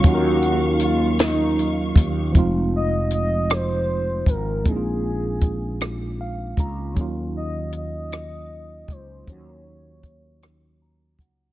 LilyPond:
<<
  \new Staff \with { instrumentName = "String section" } { \time 6/8 \key ees \dorian \tempo 4. = 52 <ges f'' des'''>2. | r2. | r2. | r2. |
r2. | }
  \new Staff \with { instrumentName = "Soft synth lead" } { \time 6/8 \key ees \dorian ges'4 f'8 ees'4 r8 | r8 ees''8 ees''8 c''4 bes'8 | aes'2~ aes'8 r8 | r8 ees''8 ees''4. c''8 |
des''2~ des''8 r8 | }
  \new Staff \with { instrumentName = "Tine electric piano" } { \time 6/8 \key ees \dorian << { r2. | r2. | r2 f''8 bes''8 | r2. |
r2 bes''8 ges''8 | } \\ { <ges bes des' ees' f' bes'>2. | <f aes c' ees' f'>2. | <aes bes c' ees' fes' f'>2. | <ges bes des' ees' f'>2. |
<ges bes des' ees' ges'>2. | } >> }
  \new Staff \with { instrumentName = "Fretless electric bass" } { \clef bass \time 6/8 \key ees \dorian ees,2~ ees,8 ees,8 | f,,2~ f,,8 aes,,8 | bes,,2~ bes,,8 des,8 | ees,2~ ees,8 des,8 |
ees,2~ ees,8 des,8 | }
  \new DrumStaff \with { instrumentName = "Drums" } \drummode { \time 6/8 <hh bd>8 hh8 hh8 <hh sn>8 hh8 <hh bd>8 | <hh bd>4 hh8 <hh ss>4 <hh bd>8 | <hh bd>4 <hh bd>8 <hh ss>4 <hh bd>8 | <hh bd>4 hh8 <hh ss>4 <hh bd>8 |
<hh bd>4 <hh bd>8 <hh ss>4 <hh bd>8 | }
>>